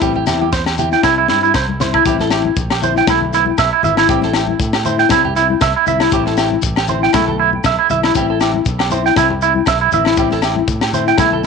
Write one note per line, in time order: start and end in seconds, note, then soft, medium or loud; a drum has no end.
0.01 0.24 A1 loud
0.01 0.18 G3 medium
0.01 0.18 C4 medium
0.01 0.18 E4 medium
0.01 0.12 G4 medium
0.01 kick medium
0.01 low conga medium
0.01 shekere medium
0.16 0.24 G4 medium
0.16 high conga medium
0.27 0.93 E2 medium
0.27 0.45 C4 soft
0.27 0.43 E4 medium
0.27 0.37 G4 medium
0.27 snare medium
0.27 low conga medium
0.27 low agogo medium
0.27 shekere medium
0.41 0.49 G4 medium
0.41 high conga medium
0.52 0.62 C5 medium
0.52 kick medium
0.52 snare medium
0.52 shekere medium
0.66 0.75 G4 medium
0.66 snare medium
0.66 low agogo medium
0.78 0.96 C4 medium
0.78 0.94 E4 medium
0.78 0.88 G4 medium
0.78 high conga medium
0.78 low conga medium
0.78 shekere medium
0.92 1.01 G5 medium
0.92 snare soft
0.92 shekere soft
1.03 1.25 C2 loud
1.03 1.20 G3 medium
1.03 1.21 C4 medium
1.03 1.13 E4 medium
1.03 1.21 E4 medium
1.03 kick medium
1.03 snare medium
1.03 low agogo medium
1.03 shekere medium
1.18 1.26 E4 medium
1.28 1.51 G2 medium
1.28 1.39 E4 medium
1.28 1.46 E4 medium
1.28 snare medium
1.28 high conga medium
1.33 1.47 C4 soft
1.43 1.51 E4 medium
1.43 shekere soft
1.54 1.98 C2 medium
1.54 1.65 C5 medium
1.54 kick medium
1.54 snare medium
1.54 low agogo medium
1.54 shekere medium
1.69 high conga medium
1.80 1.97 E4 medium
1.80 1.90 C5 medium
1.80 snare medium
1.80 low conga medium
1.80 shekere medium
1.84 1.98 C4 soft
1.94 2.02 E4 medium
1.94 kick medium
1.94 low agogo medium
2.06 2.50 A1 loud
2.06 2.22 G3 medium
2.06 2.23 C4 medium
2.06 2.23 E4 medium
2.06 2.16 G4 medium
2.06 kick loud
2.06 shekere medium
2.20 2.28 A4 medium
2.20 snare soft
2.20 high conga medium
2.30 2.48 E4 medium
2.30 2.42 G4 medium
2.30 snare medium
2.30 low agogo medium
2.30 shekere medium
2.35 2.49 C4 medium
2.45 high conga medium
2.56 3.00 A#1 medium
2.56 kick loud
2.56 shekere medium
2.70 2.79 G4 medium
2.70 snare medium
2.70 low agogo medium
2.82 3.00 C4 medium
2.82 2.98 E4 medium
2.82 2.93 C5 medium
2.82 low conga medium
2.82 shekere medium
2.96 3.05 G5 medium
2.96 snare soft
3.07 3.51 B1 loud
3.07 3.24 A3 medium
3.07 3.24 B3 medium
3.07 3.25 E4 medium
3.07 3.19 E4 medium
3.07 kick loud
3.07 snare medium
3.07 high conga medium
3.07 low agogo medium
3.07 shekere medium
3.20 low conga medium
3.33 3.51 B3 soft
3.33 3.49 E4 medium
3.33 3.44 E4 medium
3.33 snare soft
3.33 shekere medium
3.46 high conga medium
3.58 3.70 B1 loud
3.58 3.69 E5 medium
3.58 kick loud
3.58 snare medium
3.58 low agogo medium
3.58 shekere medium
3.73 3.81 E4 medium
3.83 4.06 G#1 loud
3.83 4.01 B3 medium
3.83 4.00 E4 medium
3.83 3.94 E5 medium
3.83 high conga medium
3.83 low conga medium
3.83 shekere medium
3.97 4.06 E4 medium
3.97 snare medium
3.97 low agogo medium
4.09 4.53 A1 loud
4.09 4.25 G3 medium
4.09 4.26 C4 medium
4.09 4.26 E4 medium
4.09 4.19 G4 loud
4.09 kick loud
4.09 shekere medium
4.22 4.32 A4 medium
4.22 snare soft
4.22 high conga medium
4.33 4.52 C4 soft
4.33 4.50 E4 medium
4.33 4.45 G4 medium
4.33 snare medium
4.33 low agogo medium
4.33 shekere medium
4.47 high conga medium
4.59 5.03 A2 loud
4.59 kick medium
4.59 shekere medium
4.73 4.83 G4 medium
4.73 snare medium
4.73 low agogo medium
4.85 5.03 C4 medium
4.85 5.01 E4 medium
4.85 4.95 C5 medium
4.85 low conga medium
4.85 shekere medium
4.98 5.07 G5 medium
4.98 snare soft
5.09 5.54 C2 loud
5.09 5.26 G3 medium
5.09 5.27 C4 medium
5.09 5.21 E4 medium
5.09 5.28 E4 medium
5.09 kick loud
5.09 snare medium
5.09 high conga medium
5.09 low agogo medium
5.09 shekere loud
5.25 5.33 G4 medium
5.25 low conga medium
5.35 5.52 E4 medium
5.35 5.46 E4 medium
5.35 snare soft
5.35 shekere medium
5.39 5.54 C4 soft
5.50 high conga medium
5.61 5.73 C2 loud
5.61 5.72 E5 medium
5.61 kick loud
5.61 snare medium
5.61 low agogo medium
5.61 shekere loud
5.76 5.84 E4 medium
5.86 6.09 C2 loud
5.86 6.04 C4 medium
5.86 6.03 E4 medium
5.86 5.97 E5 medium
5.86 high conga medium
5.86 low conga medium
5.86 shekere medium
6.00 6.09 E4 medium
6.00 snare medium
6.00 low agogo medium
6.12 6.56 A1 loud
6.12 6.29 G3 medium
6.12 6.29 C4 medium
6.12 6.30 E4 loud
6.12 6.23 G4 loud
6.12 kick medium
6.12 shekere loud
6.26 6.35 A4 medium
6.26 snare soft
6.26 high conga medium
6.37 6.55 C4 medium
6.37 6.54 E4 medium
6.37 6.48 G4 medium
6.37 snare medium
6.37 low agogo medium
6.37 shekere medium
6.51 high conga medium
6.62 7.07 A1 loud
6.62 kick medium
6.62 shekere loud
6.76 6.86 G4 medium
6.76 snare medium
6.76 low agogo medium
6.88 7.06 C4 medium
6.88 7.04 E4 medium
6.88 6.99 C5 medium
6.88 low conga medium
6.88 shekere medium
7.03 7.11 G5 medium
7.03 snare soft
7.13 7.57 B1 loud
7.13 7.30 A3 medium
7.13 7.30 B3 loud
7.13 7.24 E4 medium
7.13 7.31 E4 loud
7.13 kick loud
7.13 snare medium
7.13 high conga medium
7.13 low agogo medium
7.13 shekere loud
7.28 7.36 A4 medium
7.28 low conga medium
7.39 7.57 B3 soft
7.39 7.49 E4 medium
7.39 muted nylon-string guitar stroke medium
7.53 high conga medium
7.64 7.76 B1 loud
7.64 7.75 E5 medium
7.64 kick loud
7.64 snare medium
7.64 low agogo medium
7.64 shekere loud
7.79 7.87 E4 medium
7.90 8.12 B1 loud
7.90 8.06 E4 medium
7.90 8.00 E5 medium
7.90 high conga medium
7.90 low conga medium
7.90 shekere medium
8.03 8.12 E4 medium
8.03 snare medium
8.03 low agogo medium
8.15 8.59 A1 loud
8.15 8.31 G3 medium
8.15 8.32 C4 medium
8.15 8.32 E4 medium
8.15 8.26 G4 loud
8.15 kick medium
8.15 shekere loud
8.30 8.38 A4 medium
8.41 8.58 C4 medium
8.41 8.57 E4 medium
8.41 8.51 G4 medium
8.41 snare medium
8.41 low agogo medium
8.41 shekere medium
8.54 high conga medium
8.65 9.09 B1 medium
8.65 kick medium
8.65 shekere medium
8.79 8.88 G4 medium
8.79 snare medium
8.79 low agogo medium
8.90 9.09 C4 medium
8.90 9.07 E4 medium
8.90 9.01 C5 medium
8.90 low conga medium
8.90 shekere medium
9.05 9.13 G5 medium
9.05 snare soft
9.16 9.60 C2 loud
9.16 9.33 G3 medium
9.16 9.33 C4 medium
9.16 9.27 E4 medium
9.16 9.34 E4 loud
9.16 kick loud
9.16 snare medium
9.16 high conga medium
9.16 low agogo medium
9.16 shekere loud
9.30 muted clean electric guitar stroke medium
9.30 low conga medium
9.42 9.60 C4 soft
9.42 9.58 E4 medium
9.42 9.52 E4 medium
9.42 shekere medium
9.55 high conga medium
9.66 9.90 B1 medium
9.66 9.77 E5 medium
9.66 kick loud
9.66 snare medium
9.66 low agogo medium
9.66 shekere medium
9.81 9.89 E4 medium
9.92 10.15 A1 medium
9.92 10.09 E4 medium
9.92 10.03 E5 medium
9.92 high conga medium
9.92 low conga medium
9.92 shekere medium
9.96 10.10 C4 medium
10.05 10.15 E4 medium
10.05 snare medium
10.05 low agogo medium
10.16 10.61 A1 loud
10.16 10.34 G3 medium
10.16 10.34 C4 medium
10.16 10.35 E4 medium
10.16 10.28 G4 medium
10.16 kick loud
10.16 shekere loud
10.31 10.40 A4 medium
10.31 snare soft
10.31 high conga medium
10.42 10.59 E4 medium
10.42 10.53 G4 medium
10.42 snare medium
10.42 low agogo medium
10.42 shekere medium
10.47 10.61 C4 soft
10.56 high conga medium
10.68 11.11 A2 medium
10.68 kick loud
10.68 shekere medium
10.81 10.91 G4 medium
10.81 snare medium
10.81 low agogo medium
10.93 11.11 C4 medium
10.93 11.10 E4 medium
10.93 11.03 C5 medium
10.93 low conga medium
10.93 shekere medium
11.07 11.16 G5 medium
11.07 snare soft
11.18 11.46 B1 loud
11.18 11.35 A3 medium
11.18 11.35 B3 medium
11.18 11.29 E4 medium
11.18 11.36 E4 loud
11.18 kick loud
11.18 snare medium
11.18 high conga medium
11.18 low agogo medium
11.18 shekere loud
11.32 11.41 A4 medium
11.32 low conga medium
11.43 11.46 E4 medium
11.43 snare soft